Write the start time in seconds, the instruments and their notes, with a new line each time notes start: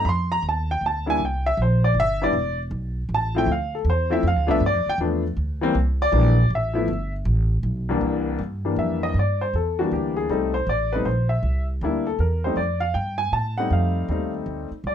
0.05 upright bass F2, upright piano B5
0.09 upright piano C6
0.32 upright piano A#5
0.42 upright bass D#2
0.49 upright piano A5
0.71 upright piano G5
0.81 upright bass D2
0.86 upright piano A5
1.06 upright piano G3 A#3 D4 E4 G#5
1.20 upright bass C2
1.25 upright piano G5
1.46 upright piano E5
1.57 upright bass A#1
1.62 upright piano C5
1.84 upright piano D5
1.94 upright bass G1
2.00 upright piano E5
2.22 upright piano G3 B3 D4 E4 D5
2.33 upright bass E1
2.71 upright bass B1
3.09 upright bass A1
3.14 upright piano A5
3.35 upright piano F3 A3 C4 E4 G5
3.46 upright bass D2
3.52 upright piano F5
3.75 upright piano A4
3.85 upright bass E2
3.90 upright piano C5
4.10 upright piano F3 A3 C4 E4 E5
4.23 upright bass F2
4.28 upright piano F5
4.36 upright bass D2
4.47 upright bass C2, upright piano F3 A3 B3 D4
4.51 upright piano E5
4.60 upright bass G2
4.66 upright piano D5
4.74 upright bass F2
4.86 upright bass D2, upright piano G5
4.98 upright bass E2, upright piano F3 A3 B3 D4
5.37 upright bass D2
5.61 upright piano E3 G3 A#3 C4
5.75 upright bass C2
6.02 upright piano D5
6.12 upright bass A#1, upright piano E3 G3 A#3 D4
6.50 upright bass A1
6.55 upright piano E5
6.73 upright piano F3 A3 B3 E4
6.88 upright bass G1
7.25 upright bass A1
7.63 upright bass B1
7.89 upright piano C2 E3 G3 A#3 D4
8.01 upright bass C2
8.39 upright bass G2
8.65 upright piano E3 G3 A#3 D4
8.76 upright bass F2, upright piano E5
9.03 upright piano D#5
9.14 upright bass G2
9.19 upright piano D5
9.41 upright piano C5
9.53 upright bass E2, upright piano A4
9.79 upright piano E3 G3 A#3 D4 F#4
9.91 upright bass D2, upright piano G4
10.17 upright piano G#4
10.29 upright bass C2, upright piano G3 A3 C4 D#4 A4
10.54 upright piano C5
10.67 upright bass A1, upright piano D5
10.93 upright piano G3 A3 C4 D#4 B4
11.05 upright bass A#1, upright piano C5
11.29 upright piano E5
11.43 upright bass C2
11.81 upright bass D2, upright piano G3 A#3 D4 E4
12.07 upright piano A4
12.19 upright bass E2, upright piano A#4
12.44 upright piano G3 A3 C4 D#4 C5
12.56 upright bass F2, upright piano D5
12.80 upright piano F5
12.94 upright bass G2, upright piano G5
13.18 upright piano G#5
13.32 upright bass A2, upright piano A5
13.58 upright piano G3 A3 C4 D#4 F#5
13.70 upright bass F2, upright piano F5
14.09 upright bass D#2, upright piano G3 A3 C4 D#4
14.46 upright bass D2
14.71 muted upright bass stroke
14.84 upright bass C2, upright piano D5